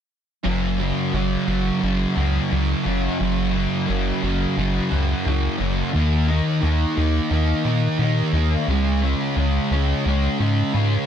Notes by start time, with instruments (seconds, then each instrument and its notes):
0.44 sub bass F#1, distorted electric guitar F#2 C#3 F#3
0.79 distorted electric guitar C#3 F#3
1.13 sub bass F#1, distorted electric guitar F#2 C#3 F#3
1.47 sub bass F#1, distorted electric guitar C#3 F#3
1.81 sub bass F#1, distorted electric guitar F#2 C#3 F#3
2.16 sub bass C#2, distorted electric guitar C#3 F#3
2.50 sub bass C#2, distorted electric guitar F#2 C#3 F#3
2.84 sub bass F#1, distorted electric guitar C#3 F#3
3.19 sub bass F#1, distorted electric guitar F#2 C#3 F#3
3.53 distorted electric guitar C#3 F#3
3.86 sub bass F#1, distorted electric guitar F#2 C#3 F#3
4.23 sub bass F#1, distorted electric guitar C#3 F#3
4.56 sub bass F#1, distorted electric guitar F#2 C#3 F#3
4.91 sub bass C#2, distorted electric guitar C#3 F#3
5.25 sub bass C#2, distorted electric guitar F#2 C#3 F#3
5.58 sub bass F#1, distorted electric guitar C#3 F#3
5.93 sub bass D#2, distorted electric guitar D#3 A#3 D#4
6.28 distorted electric guitar A#3 D#4
6.62 sub bass D#2, distorted electric guitar D#3 A#3 D#4
6.97 sub bass D#2, distorted electric guitar A#3 D#4
7.30 sub bass D#2, distorted electric guitar D#3 A#3 D#4
7.65 sub bass A#2, distorted electric guitar A#3 D#4
7.98 sub bass A#2, distorted electric guitar D#3 A#3 D#4
8.32 sub bass D#2, distorted electric guitar D#4
8.37 distorted electric guitar A#3
8.67 sub bass C#2, distorted electric guitar C#3 G#3 C#4
9.02 distorted electric guitar G#3 C#4
9.36 sub bass C#2, distorted electric guitar C#3 G#3 C#4
9.71 sub bass C#2, distorted electric guitar G#3 C#4
10.05 sub bass C#2, distorted electric guitar C#3 G#3 C#4
10.39 sub bass G#2, distorted electric guitar G#3 C#4
10.73 sub bass G#2, distorted electric guitar C#3 G#3 C#4